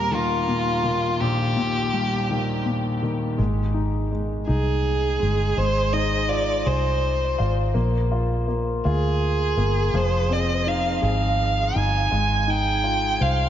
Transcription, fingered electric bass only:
3.39 4.44 G#1 medium
4.49 5.17 C2 medium
5.22 5.56 G1 medium
5.57 6.62 G#1 medium
6.66 7.35 C2 medium
7.39 7.74 G#1 medium
7.75 8.80 A#1 medium
8.85 9.54 D2 medium
9.57 9.91 G1 medium
9.93 10.98 F1 medium
11.03 11.71 G#1 medium
11.76 12.10 G1 medium
12.12 13.17 G#1 medium
13.21 13.49 C2 medium

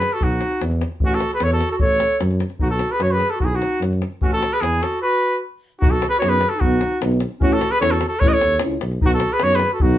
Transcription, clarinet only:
0.00 0.15 G#4 medium
0.14 0.24 F#4 medium
0.23 0.62 D#4 medium
1.05 1.15 C#4 medium
1.14 1.32 F#4 medium
1.33 1.43 G#4 medium
1.42 1.50 A4 medium
1.51 1.70 F#4 medium
1.72 1.76 F#4 medium
1.81 2.18 A4 medium
2.60 2.70 D#4 medium
2.72 2.95 F#4 medium
2.93 3.02 G#4 medium
3.00 3.17 F#4 medium
3.15 3.36 G#4 medium
3.34 3.42 F#4 medium
3.42 3.46 D#4 medium
3.42 3.56 E4 medium
3.54 3.81 D#4 medium
4.22 4.31 C#4 medium
4.36 4.55 F#4 medium
4.53 4.63 G#4 medium
4.62 4.83 E4 medium
4.82 5.01 F#4 medium
5.03 5.39 F#4 medium
5.80 5.92 D#4 medium
5.90 6.08 F#4 medium
6.09 6.17 G#4 medium
6.17 6.28 F#4 medium
6.26 6.51 G#4 medium
6.49 6.56 F#4 medium
6.55 6.98 D#4 medium
7.40 7.55 C#4 medium
7.54 7.72 F#4 medium
7.71 7.79 G#4 medium
7.79 7.91 A4 medium
7.90 8.07 F#4 medium
8.08 8.17 F#4 medium
8.16 8.28 A4 medium
8.26 8.34 B4 medium
8.32 8.60 A4 medium
9.02 9.07 D#4 medium
9.16 9.33 F#4 medium
9.32 9.44 G#4 medium
9.43 9.55 F#4 medium
9.53 9.71 G#4 medium
9.72 9.82 F#4 medium
9.81 9.98 D#4 medium

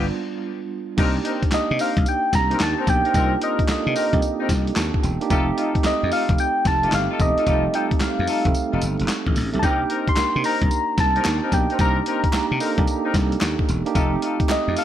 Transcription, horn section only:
0.98 1.16 C4 medium
0.98 1.16 D#4 medium
0.98 1.16 A#4 loud
1.25 1.43 C4 medium
1.25 1.43 D#4 medium
1.25 1.43 A#4 medium
1.79 1.97 C4 medium
1.79 1.97 D#4 medium
1.79 1.97 A#4 medium
2.51 2.60 C4 medium
2.51 2.60 D#4 medium
2.51 2.60 A#4 medium
2.78 2.87 C4 medium
2.78 2.87 D#4 medium
2.78 2.87 A#4 medium
3.05 3.13 C4 medium
3.05 3.13 D#4 medium
3.05 3.14 A#4 medium
3.14 3.32 C4 loud
3.14 3.32 D#4 medium
3.14 3.32 A#4 loud
3.41 3.59 C4 medium
3.41 3.59 D#4 medium
3.41 3.59 A#4 medium
3.95 4.13 C4 medium
3.95 4.13 D#4 medium
3.95 4.13 A#4 medium
4.40 4.49 C4 medium
4.40 4.49 D#4 medium
4.40 4.49 A#4 medium
5.30 5.48 D#4 loud
5.30 5.48 F4 medium
5.30 5.48 A4 loud
5.57 5.75 D#4 medium
5.57 5.75 F4 medium
5.57 5.75 A4 medium
6.11 6.29 D#4 medium
6.11 6.29 F4 medium
6.11 6.29 A4 medium
6.83 6.92 D#4 medium
6.83 6.93 F4 medium
6.83 6.93 A4 medium
7.10 7.19 D#4 medium
7.10 7.20 F4 medium
7.10 7.20 A4 medium
7.37 7.45 D#4 medium
7.37 7.46 F4 medium
7.37 7.46 A4 medium
7.47 7.64 D#4 medium
7.47 7.64 F4 medium
7.47 7.64 A4 loud
7.74 7.91 D#4 medium
7.74 7.91 F4 medium
7.74 7.92 A4 medium
8.28 8.45 D#4 medium
8.28 8.45 F4 medium
8.28 8.45 A4 medium
8.72 8.82 D#4 medium
8.72 8.82 F4 medium
8.72 8.82 A4 medium
9.62 9.80 C4 loud
9.62 9.80 D#4 medium
9.62 9.81 A#4 loud
9.90 10.07 C4 medium
9.90 10.07 D#4 medium
9.90 10.08 A#4 medium
10.44 10.61 C4 medium
10.44 10.62 D#4 medium
10.44 10.62 A#4 medium
11.16 11.25 C4 medium
11.16 11.25 D#4 medium
11.16 11.25 A#4 medium
11.43 11.52 C4 medium
11.43 11.52 D#4 medium
11.43 11.52 A#4 medium
11.70 11.78 C4 medium
11.70 11.78 D#4 medium
11.70 11.79 A#4 medium
11.79 11.97 C4 loud
11.79 11.97 D#4 medium
11.79 11.97 A#4 loud
12.06 12.24 C4 medium
12.06 12.24 D#4 medium
12.06 12.24 A#4 medium
12.60 12.78 C4 medium
12.60 12.78 D#4 medium
12.60 12.78 A#4 medium
13.05 13.14 C4 medium
13.05 13.14 D#4 medium
13.05 13.14 A#4 medium
13.95 14.13 D#4 medium
13.95 14.13 F4 medium
13.95 14.13 A4 loud
14.22 14.40 D#4 medium
14.22 14.40 F4 medium
14.22 14.40 A4 medium
14.76 14.84 D#4 medium
14.76 14.84 F4 medium
14.76 14.84 A4 medium

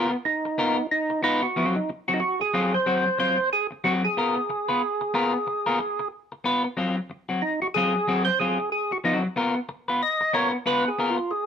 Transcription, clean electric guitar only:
0.00 0.15 B3 loud
0.00 0.12 F4 loud
0.00 0.11 A#4 loud
0.12 muted clean electric guitar stroke soft
0.25 muted clean electric guitar stroke soft
0.45 muted clean electric guitar stroke soft
0.58 0.80 B3 medium
0.58 0.78 F4 medium
0.58 0.77 A#4 loud
0.78 muted clean electric guitar stroke soft
1.10 muted clean electric guitar stroke soft
1.23 1.45 B3 medium
1.23 1.42 F4 medium
1.23 1.42 B4 medium
1.43 muted clean electric guitar stroke soft
1.56 1.79 F#3 medium
1.56 1.76 C4 medium
1.56 1.75 F4 medium
1.76 muted clean electric guitar stroke soft
1.89 muted clean electric guitar stroke soft
2.08 2.21 F#3 medium
2.08 2.21 C4 medium
2.08 2.20 F#4 medium
2.41 muted clean electric guitar stroke medium
2.54 2.76 F#3 medium
2.54 2.74 C4 medium
2.54 2.73 F4 loud
2.74 muted clean electric guitar stroke medium
2.86 3.08 F#3 medium
2.86 3.06 C4 medium
2.86 3.06 F#4 medium
3.06 muted clean electric guitar stroke medium
3.19 3.37 F#3 medium
3.19 3.38 C4 medium
3.19 3.37 F4 medium
3.38 muted clean electric guitar stroke soft
3.71 muted clean electric guitar stroke soft
3.84 4.06 F#3 medium
3.84 4.03 C4 medium
3.84 4.03 F#4 loud
4.04 muted clean electric guitar stroke soft
4.17 4.39 B3 medium
4.17 4.36 F4 medium
4.17 4.35 A#4 medium
4.37 muted clean electric guitar stroke medium
4.49 muted clean electric guitar stroke soft
4.69 4.82 B3 medium
4.69 4.81 F4 medium
4.69 4.81 B4 medium
5.01 muted clean electric guitar stroke soft
5.14 5.36 B3 medium
5.14 5.34 F4 medium
5.14 5.33 A#4 loud
5.34 muted clean electric guitar stroke soft
5.47 muted clean electric guitar stroke soft
5.66 5.79 B3 medium
5.66 5.79 F4 medium
5.66 5.79 A#4 medium
5.80 muted clean electric guitar stroke soft
5.99 muted clean electric guitar stroke soft
6.32 muted clean electric guitar stroke soft
6.44 6.66 B3 medium
6.44 6.64 F4 medium
6.44 6.64 B4 medium
6.64 muted clean electric guitar stroke soft
6.77 6.99 F#3 medium
6.77 6.97 C4 medium
6.77 6.96 F4 medium
6.97 muted clean electric guitar stroke medium
7.10 muted clean electric guitar stroke soft
7.29 7.42 F#3 medium
7.29 7.41 C4 medium
7.29 7.41 F#4 medium
7.62 muted clean electric guitar stroke soft
7.76 7.97 F#3 medium
7.76 7.95 C4 medium
7.76 7.94 F4 medium
7.95 muted clean electric guitar stroke medium
8.08 8.29 F#3 medium
8.08 8.27 C4 medium
8.08 8.27 F#4 medium
8.27 muted clean electric guitar stroke medium
8.40 8.58 F#3 medium
8.40 8.58 C4 medium
8.40 8.59 F4 medium
8.91 muted clean electric guitar stroke soft
9.04 9.27 F#3 medium
9.04 9.24 C4 medium
9.04 9.23 F#4 medium
9.24 muted clean electric guitar stroke soft
9.36 9.59 B3 medium
9.36 9.55 F4 loud
9.36 9.55 A#4 medium
9.56 muted clean electric guitar stroke soft
9.69 muted clean electric guitar stroke medium
9.88 10.01 B3 medium
9.88 10.01 F4 medium
9.88 10.01 B4 medium
10.21 muted clean electric guitar stroke medium
10.33 10.56 B3 medium
10.33 10.52 F4 medium
10.33 10.52 A#4 loud
10.53 muted clean electric guitar stroke soft
10.66 10.88 B3 medium
10.66 10.85 F4 medium
10.66 10.85 B4 medium
10.86 muted clean electric guitar stroke soft
10.99 11.17 B3 medium
10.99 11.17 F4 medium
10.99 11.17 A#4 medium
11.18 muted clean electric guitar stroke soft

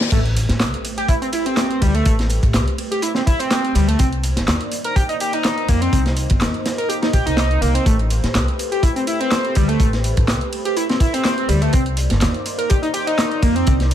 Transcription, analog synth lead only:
0.12 0.18 A3 loud
0.98 1.08 G4 medium
1.09 1.15 E4 loud
1.22 1.27 C4 medium
1.33 1.45 E4 medium
1.46 1.80 C4 loud
1.81 1.94 G3 loud
1.95 2.04 A3 loud
2.05 2.11 A3 loud
2.91 3.02 G4 medium
3.02 3.08 E4 loud
3.15 3.20 C4 medium
3.26 3.39 E4 medium
3.39 3.74 C4 loud
3.75 3.87 G3 loud
3.88 3.98 A3 loud
3.99 4.05 C4 loud
4.85 4.95 A#4 medium
4.96 5.02 G4 loud
5.09 5.14 D#4 medium
5.21 5.33 G4 medium
5.34 5.67 D#4 loud
5.69 5.81 A#3 loud
5.81 5.91 C4 loud
5.92 5.98 C4 loud
6.78 6.88 A#4 medium
6.89 6.95 G4 loud
7.02 7.07 D#4 medium
7.13 7.25 G4 medium
7.26 7.61 D#4 loud
7.61 7.74 A#3 loud
7.75 7.85 C4 loud
7.86 7.92 A3 loud
8.72 8.82 G4 medium
8.83 8.89 E4 loud
8.96 9.01 C4 medium
9.07 9.20 E4 medium
9.20 9.54 C4 loud
9.56 9.68 G3 loud
9.68 9.78 A3 loud
9.80 9.86 A3 loud
10.65 10.76 G4 medium
10.77 10.82 E4 loud
10.89 10.94 C4 medium
11.01 11.13 E4 medium
11.14 11.48 C4 loud
11.49 11.61 G3 loud
11.62 11.72 A3 loud
11.73 11.79 C4 loud
12.58 12.69 A#4 medium
12.70 12.76 G4 loud
12.82 12.88 D#4 medium
12.94 13.06 G4 medium
13.07 13.41 D#4 loud
13.43 13.55 A#3 loud
13.56 13.66 C4 loud
13.67 13.73 C4 loud

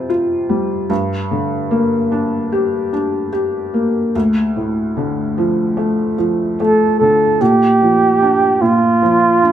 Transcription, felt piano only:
0.00 0.86 F2 medium
0.00 0.92 C3 soft
0.00 0.49 G3 soft
0.00 0.92 C4 soft
0.00 0.09 F4 soft
0.09 0.88 F4 soft
0.49 0.89 G3 soft
0.90 4.10 G2 medium
1.31 2.89 D3 soft
1.71 3.29 A#3 soft
2.12 2.91 D4 soft
2.52 3.31 G4 medium
2.93 4.11 D4 soft
3.33 4.12 G4 soft
3.74 4.13 A#3 soft
4.15 7.37 D2 soft
4.56 6.14 A2 soft
4.97 6.55 D3 soft
5.38 6.16 F3 soft
5.77 6.59 A3 medium
6.18 7.36 F3 soft
6.60 7.38 A3 soft
7.01 7.40 D3 soft
7.41 8.60 A#2 medium
7.82 9.01 F3 soft
8.22 9.41 D4 soft
8.61 9.52 A#2 soft
9.02 9.52 F3 medium
9.43 9.52 D4 soft

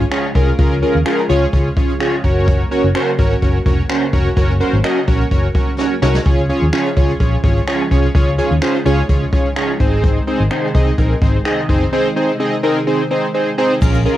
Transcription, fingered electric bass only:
0.35 0.50 C2 medium
0.59 0.82 C#2 loud
0.95 1.02 D#2 medium
1.30 1.45 C#2 medium
1.53 1.68 C#2 loud
2.24 2.62 F#1 loud
2.84 2.91 F#1 medium
3.19 3.34 G#1 medium
3.42 3.57 F#1 loud
3.66 3.81 F1 medium
4.13 4.28 F1 medium
4.37 4.60 F#1 loud
4.73 4.80 G#1 medium
5.08 5.23 A#1 medium
5.31 5.46 F#1 loud
6.02 6.17 C2 medium
6.26 6.49 C#2 medium
6.62 6.69 D#2 medium
6.97 7.12 C#2 medium
7.20 7.35 A#1 loud
7.44 7.59 G#1 medium
7.91 8.06 C2 medium
8.15 8.38 C#2 loud
8.51 8.58 D#2 medium
8.86 9.01 C#2 medium
9.09 9.24 C#2 loud
9.80 10.18 G#1 medium
10.40 10.47 G#1 medium
10.75 10.90 C2 medium
10.98 11.13 A#1 loud
11.22 11.37 G#1 medium
11.69 11.84 F#1 medium
13.82 14.05 A#1 loud

